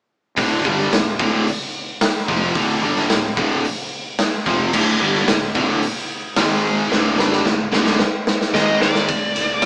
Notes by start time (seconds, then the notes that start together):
0.36 D1 D2 A2 D3, kick, open hi-hat
0.64 G1 G2 D3 G3, kick
0.79 snare
0.91 D1 D2 A2, snare, open hi-hat
1.18 D1 D2 A2 D3, kick
1.47 open hi-hat
2.01 snare, open hi-hat
2.26 F1 F2 C3 F3, kick
2.55 D1 D2 A2 D3, kick, open hi-hat
2.81 G1 G2 D3 G3
2.96 snare
3.09 D1 D2 A2, snare, open hi-hat
3.35 D1 D2 A2 D3, kick
3.64 open hi-hat
4.19 snare, open hi-hat
4.46 F1 F2 C3 F3, kick
4.73 D1 D2 A2 D3, kick, crash
5.00 G1 G2 D3 G3
5.15 snare
5.27 D1 D2 A2, snare, open hi-hat
5.55 D1 D2 A2 D3, kick
5.82 open hi-hat
6.36 G#1 G#2 D#3 G#3, snare, open hi-hat
6.90 D1 D2 A2 D3, snare
7.18 G1 G2 D3 G3, snare
7.32 snare
7.45 D1 D2 A2, snare
7.72 D1 D2 A2 D3, snare
7.86 snare
7.99 snare
8.27 snare
8.41 snare
8.53 G#1 G#2 D#3 G#3 D#5, snare
8.82 D5, snare
8.95 snare
9.08 D1, kick, ride
9.35 D1, snare, ride
9.62 D2, snare, ride